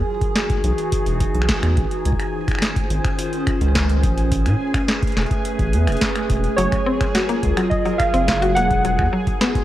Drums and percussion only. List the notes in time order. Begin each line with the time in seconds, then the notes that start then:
0.21 kick, closed hi-hat
0.36 snare, closed hi-hat
0.50 kick, closed hi-hat
0.64 closed hi-hat
0.78 closed hi-hat
0.92 kick, closed hi-hat
1.06 closed hi-hat
1.20 kick, closed hi-hat
1.35 closed hi-hat
1.42 finger snap
1.49 kick, snare, closed hi-hat
1.63 finger snap, closed hi-hat
1.77 kick, closed hi-hat
1.91 closed hi-hat
2.05 closed hi-hat
2.12 kick
2.20 finger snap, closed hi-hat
2.48 finger snap, kick, closed hi-hat
2.51 finger snap
2.55 finger snap
2.58 finger snap, snare, closed hi-hat
2.76 kick, closed hi-hat
2.90 closed hi-hat
3.04 finger snap, kick, closed hi-hat
3.18 closed hi-hat
3.33 closed hi-hat
3.47 finger snap, kick, closed hi-hat
3.61 closed hi-hat
3.75 kick, snare, closed hi-hat
3.89 closed hi-hat
4.03 kick, closed hi-hat
4.18 closed hi-hat
4.32 kick, closed hi-hat
4.46 finger snap, closed hi-hat
4.74 finger snap, kick, closed hi-hat
4.88 snare, closed hi-hat
5.03 kick, closed hi-hat
5.07 closed hi-hat
5.12 closed hi-hat
5.17 snare
5.21 closed hi-hat
5.26 closed hi-hat
5.31 kick, closed hi-hat
5.45 closed hi-hat
5.59 kick, closed hi-hat
5.73 closed hi-hat
5.87 finger snap, closed hi-hat
5.92 closed hi-hat
5.97 closed hi-hat
6.01 kick, snare, closed hi-hat
6.16 finger snap, closed hi-hat
6.30 kick, closed hi-hat
6.44 closed hi-hat
6.58 closed hi-hat
6.72 finger snap, kick, closed hi-hat
7.01 finger snap, kick, closed hi-hat
7.15 snare, closed hi-hat
7.29 closed hi-hat
7.43 kick, closed hi-hat
7.57 finger snap, closed hi-hat
7.71 kick, closed hi-hat
7.86 closed hi-hat
8.00 finger snap, kick, closed hi-hat
8.14 closed hi-hat
8.28 kick, snare, closed hi-hat
8.42 closed hi-hat
8.56 closed hi-hat
8.70 kick, closed hi-hat
8.85 closed hi-hat
8.99 finger snap, kick
9.27 kick, closed hi-hat
9.41 snare, closed hi-hat
9.55 kick, closed hi-hat